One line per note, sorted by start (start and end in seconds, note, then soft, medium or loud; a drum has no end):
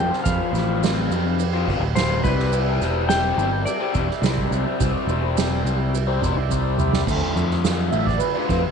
0.00 0.10 F2 medium
0.00 0.23 F2 loud
0.00 0.24 C3 loud
0.00 0.11 F3 medium
0.00 0.11 G3 medium
0.00 0.11 C4 medium
0.00 2.21 G4 medium
0.00 2.22 C5 medium
0.00 2.21 F5 medium
0.00 0.22 G5 medium
0.00 0.24 C6 loud
0.10 0.24 F3 medium
0.10 0.26 G3 medium
0.10 0.26 C4 medium
0.10 0.26 F4 medium
0.10 snare soft
0.24 0.81 F2 loud
0.24 0.39 F2 loud
0.24 0.81 C3 medium
0.24 0.51 F3 loud
0.24 0.53 G3 loud
0.24 0.54 C4 loud
0.24 0.54 F4 loud
0.24 1.34 F5 medium
0.24 2.23 B5 medium
0.24 kick loud
0.24 ride loud
0.24 maracas loud
0.52 1.07 A1 loud
0.52 0.82 F3 medium
0.52 0.83 G3 medium
0.52 0.83 C4 loud
0.52 0.83 F4 loud
0.52 ride medium
0.52 maracas medium
0.56 snare soft
0.82 1.39 F2 medium
0.82 1.39 C3 loud
0.82 1.09 F3 loud
0.82 1.11 G3 loud
0.82 1.12 C4 loud
0.82 1.12 F4 loud
0.82 snare loud
0.82 ride loud
0.82 maracas loud
1.10 1.64 F2 medium
1.10 1.25 F3 medium
1.10 1.26 G3 medium
1.10 1.26 C4 medium
1.10 1.24 F4 medium
1.10 ride medium
1.10 maracas medium
1.25 muted overdriven electric guitar stroke medium
1.39 ride loud
1.39 maracas medium
1.53 1.66 F3 medium
1.53 1.68 G3 medium
1.53 1.69 C4 medium
1.53 1.69 F4 medium
1.67 1.79 G1 medium
1.67 1.82 F3 medium
1.67 1.83 G3 medium
1.67 1.82 C4 medium
1.67 1.82 F4 medium
1.67 kick medium
1.67 ride medium
1.80 2.21 D1 medium
1.80 muted overdriven electric guitar stroke soft
1.95 2.22 F2 loud
1.95 2.22 C3 medium
1.95 2.23 F3 loud
1.95 2.24 G3 loud
1.95 2.24 C4 loud
1.95 2.24 F4 loud
1.95 2.23 C5 loud
1.95 snare loud
1.95 ride loud
1.95 maracas medium
2.23 2.78 C2 loud
2.23 2.51 C3 medium
2.23 2.52 G3 medium
2.23 2.40 C4 loud
2.23 2.39 E4 medium
2.23 7.03 G4 medium
2.23 2.39 G4 loud
2.23 3.12 B4 loud
2.23 2.37 C5 loud
2.23 7.03 D5 medium
2.23 7.02 E5 medium
2.23 7.02 G5 medium
2.23 kick loud
2.23 ride medium
2.23 maracas medium
2.37 2.52 C4 medium
2.37 2.53 E4 medium
2.37 2.53 G4 medium
2.37 2.53 C5 medium
2.37 snare soft
2.52 3.07 C3 medium
2.52 3.08 G3 loud
2.52 2.79 C4 medium
2.52 2.80 E4 loud
2.52 2.81 G4 loud
2.52 2.82 C5 loud
2.52 ride loud
2.52 maracas medium
2.79 3.34 E1 medium
2.79 3.08 C4 medium
2.79 3.09 E4 medium
2.79 3.09 G4 medium
2.79 3.10 C5 loud
2.79 snare soft
2.79 ride medium
2.79 maracas medium
3.08 4.21 C3 medium
3.08 4.22 G3 medium
3.08 3.37 C4 loud
3.08 3.38 E4 loud
3.08 3.39 G4 loud
3.08 3.39 C5 loud
3.08 3.68 G5 loud
3.08 snare loud
3.08 ride loud
3.08 maracas loud
3.37 3.65 G1 medium
3.37 3.51 C4 medium
3.37 3.51 E4 medium
3.37 3.50 G4 medium
3.37 3.50 C5 medium
3.37 ride medium
3.37 maracas medium
3.51 muted overdriven electric guitar stroke medium
3.65 6.46 D5 medium
3.65 ride loud
3.65 maracas medium
3.80 3.92 C4 medium
3.80 3.93 E4 medium
3.80 3.94 G4 medium
3.80 3.95 C5 medium
3.93 4.08 E1 loud
3.93 4.08 C4 medium
3.93 4.08 E4 medium
3.93 4.07 G4 medium
3.93 4.07 C5 medium
3.93 kick medium
3.93 ride medium
3.93 maracas medium
4.08 muted overdriven electric guitar stroke medium
4.08 snare soft
4.21 4.49 C2 loud
4.21 4.78 C3 loud
4.21 4.79 G3 loud
4.21 4.50 C4 loud
4.21 4.51 E4 loud
4.21 4.52 G4 loud
4.21 4.53 C5 loud
4.21 snare loud
4.21 ride medium
4.21 maracas loud
4.38 kick medium
4.51 4.65 C2 loud
4.51 4.66 C4 medium
4.51 4.66 E4 medium
4.51 4.65 G4 medium
4.51 4.64 C5 medium
4.51 ride medium
4.51 maracas medium
4.65 4.79 C4 medium
4.65 4.80 E4 medium
4.65 4.80 G4 medium
4.65 4.81 C5 medium
4.79 4.94 C2 loud
4.79 5.35 C3 loud
4.79 5.35 G3 loud
4.79 5.07 C4 loud
4.79 5.07 E4 loud
4.79 5.08 G4 loud
4.79 5.09 C5 loud
4.79 kick loud
4.79 ride loud
4.79 maracas loud
5.07 5.61 E1 medium
5.07 5.36 C4 medium
5.07 5.36 E4 medium
5.07 5.37 G4 medium
5.07 5.37 C5 loud
5.07 ride medium
5.07 maracas medium
5.36 5.93 C3 loud
5.36 5.93 G3 loud
5.36 5.63 C4 loud
5.36 5.63 E4 loud
5.36 5.65 G4 loud
5.36 5.65 C5 loud
5.36 snare loud
5.36 ride loud
5.36 maracas loud
5.64 6.19 C2 medium
5.64 5.78 C4 medium
5.64 5.78 E4 medium
5.64 5.77 G4 medium
5.64 5.77 C5 medium
5.64 ride medium
5.64 maracas medium
5.79 muted overdriven electric guitar stroke medium
5.94 ride loud
5.94 maracas medium
6.07 6.20 C4 medium
6.07 6.21 E4 medium
6.07 6.22 G4 medium
6.07 6.23 C5 medium
6.21 6.35 E1 medium
6.21 6.36 C4 medium
6.21 6.36 E4 medium
6.21 6.35 G4 medium
6.21 6.35 C5 medium
6.21 kick medium
6.21 ride medium
6.21 maracas medium
6.36 7.03 C2 medium
6.36 muted overdriven electric guitar stroke medium
6.50 7.05 C3 loud
6.50 7.05 G3 loud
6.50 6.76 C4 medium
6.50 6.77 E4 medium
6.50 6.78 G4 loud
6.50 6.79 C5 loud
6.50 kick medium
6.50 maracas loud
6.77 6.93 C4 medium
6.77 6.92 E4 medium
6.77 6.91 G4 medium
6.77 6.91 C5 medium
6.77 mid tom loud
6.77 maracas medium
6.92 7.06 C4 medium
6.92 7.06 E4 medium
6.92 7.05 G4 medium
6.92 7.05 C5 medium
6.92 snare medium
7.06 7.62 D2 medium
7.06 7.21 D2 loud
7.06 7.34 A2 loud
7.06 7.45 D3 medium
7.06 7.36 D3 loud
7.06 7.45 F3 medium
7.06 7.44 A3 medium
7.06 7.36 A3 loud
7.06 7.37 F4 loud
7.06 kick loud
7.06 crash loud
7.06 maracas medium
7.35 7.89 F2 medium
7.35 7.62 A2 medium
7.35 7.64 D3 medium
7.35 7.64 A3 medium
7.35 7.65 F4 loud
7.35 ride medium
7.35 maracas medium
7.51 snare soft
7.63 8.71 D2 loud
7.63 7.91 A2 loud
7.63 7.92 D3 medium
7.63 7.93 A3 loud
7.63 7.94 F4 loud
7.63 snare loud
7.63 ride loud
7.63 maracas loud
7.91 8.19 A1 medium
7.91 8.07 A2 medium
7.91 8.07 D3 medium
7.91 8.06 A3 medium
7.91 8.06 F4 medium
7.91 8.06 E5 loud
7.91 ride medium
7.91 maracas medium
8.05 8.20 D5 loud
8.05 muted overdriven electric guitar stroke medium
8.05 kick medium
8.19 8.46 B4 medium
8.19 ride loud
8.19 maracas medium
8.35 8.49 D3 medium
8.35 8.50 A3 medium
8.35 8.51 F4 medium
8.46 8.63 F2 loud
8.46 8.63 A2 medium
8.46 8.62 C5 loud
8.46 kick medium
8.46 ride medium
8.46 maracas medium
8.50 8.63 D3 medium
8.50 8.63 A3 medium
8.50 8.63 F4 medium
8.56 8.64 B4 medium
8.64 muted overdriven electric guitar stroke medium